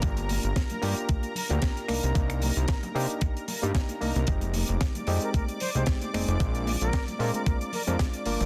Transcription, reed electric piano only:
X:1
M:4/4
L:1/16
Q:"Swing 16ths" 1/4=113
K:Bbmix
V:1 name="Reed electric piano"
[B,DFG]6 [B,DFG]4 z [B,DFG]3 [B,DEB]2 | [B,DEG]6 [B,DEG]4 z [B,DEG]3 [B,DEB]2 | [A,CEG]6 [A,CEG]4 z [A,CEG]3 [A,CEA]2 | [A,CDF]6 [A,CDF]4 z [A,CDF]3 [B,DFB]2 |]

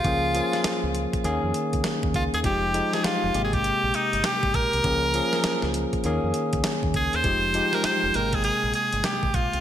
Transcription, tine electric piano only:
X:1
M:4/4
L:1/8
Q:"Swing 16ths" 1/4=100
K:Ab
V:1 name="Tine electric piano"
[F,B,DA] [F,B,DA]2 z [E,B,DA]3 z | [F,A,EG] [F,A,EG]2 [C,A,B,G]3 z2 | [F,B,DA] [F,B,DA]2 z [E,B,DA]3 z | [F,A,EG] [F,A,EG]2 [=B,,C,A,_B,g]3 z2 |]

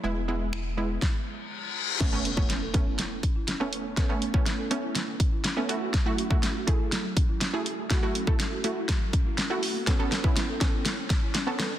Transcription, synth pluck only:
X:1
M:4/4
L:1/16
Q:1/4=122
K:A
V:1 name="Synth pluck"
[G,B,E] z [G,B,E]3 z [G,B,E]2 z8 | [A,B,C] [A,B,C] z [A,B,C]2 z [A,B,C]4- [A,B,C] z2 [A,B,C]2 z | [A,B,C] [A,B,C] z [A,B,C]2 z [A,B,C]4- [A,B,C] z2 [A,B,C] [A,EF]2 | z [A,EF] z [A,EF]2 z [A,EG]4- [A,EG] z2 [A,EG]2 z |
[A,EF] [A,EF] z [A,EA]2 z [A,EF]4- [A,EF] z2 [A,EF]2 z | [B,CA] [B,CA] z [B,CE]2 z [B,CA]4- [B,CA] z2 [B,CA]2 z |]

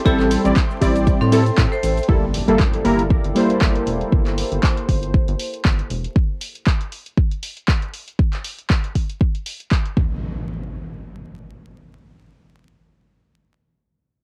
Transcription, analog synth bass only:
X:1
M:4/4
L:1/16
Q:"Swing 16ths" 1/4=118
K:Gdor
V:1 name="Analog synth bass" clef=bass
A,,,2 z A,,, z2 A,,,2 z A,,2 z A,, z A,,, z | G,,,2 z G,,, z2 G,,,2 z G,,, z2 G,,, z E,,, z | G,,,2 z G,,, z2 G,,,2 z G,,, z2 G,,, z E,,, z | z16 |
z16 | z16 | z16 |]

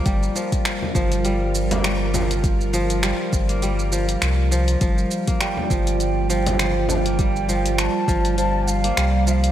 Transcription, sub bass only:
X:1
M:4/4
L:1/8
Q:"Swing 16ths" 1/4=101
K:Gm
V:1 name="Sub bass" clef=bass
G,,, z2 G,,,4- G,,,- | G,,,2 z G,,,3 C,,2 | G,,, z2 G,,,4- G,,,- | G,,,2 z G,,,3 C,,2 |]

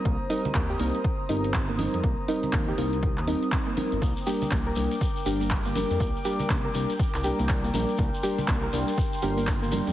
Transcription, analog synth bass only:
X:1
M:4/4
L:1/16
Q:"Swing 16ths" 1/4=121
K:Cm
V:1 name="Analog synth bass" clef=bass
C,, z3 E,, z C,, z3 G,,,4- G,,, F,, | C,, z3 E,, z C,,3 E,, z4 z G,,, | C,, z3 C,, z C,, z3 G,,,4- G,,, F,, | C,, z3 C,, z C,, z2 C,, z C,,3 B,,, z |
C,, z3 C,, z C,, z3 G,,,4- G,,, F,, |]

